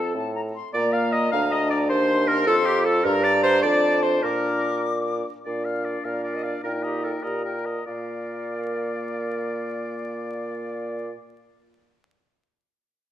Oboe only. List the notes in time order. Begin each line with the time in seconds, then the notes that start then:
Already playing: A4
0.74 D5
0.93 F5
1.12 D#5
1.32 F5
1.51 D#5
1.70 D5
1.90 C5
2.28 A#4
2.47 A4
2.66 G4
2.85 A4
3.05 A#4
3.24 D5
3.43 C5
3.63 D5
4.03 C5
4.22 A#4
5.45 D5
5.65 F5
5.85 D5
6.04 F5
6.23 D5
6.43 F5
6.63 A#4
6.83 D#5
7.04 A#4
7.23 D#5
7.44 A#4
7.66 D#5
7.86 D5